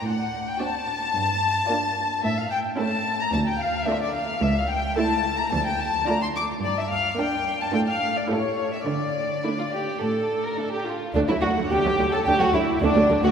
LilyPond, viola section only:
\new Staff \with { instrumentName = "Viola section" } { \time 4/4 \key d \minor \tempo 4 = 109 r4 <c' d'>8. r4 r16 <bes d'>8. r16 | r4 <a cis'>8. r4 r16 <a d'>8. r16 | r4 <a e'>8. r4 r16 <a d'>8. r16 | r4 <bes d'>8. r16 <a d'>8. r16 <a e'>8. r16 |
r4 <a d'>8. r4 r16 <a d'>8. r16 | \key d \major <a d'>16 <fis a>16 <d fis>16 <fis a>16 <a d'>16 <fis a>16 <d fis>16 <fis a>16 <a d'>16 <fis a>16 <d fis>16 r16 <a d'>16 <fis a>16 <d fis>16 <fis a>16 | }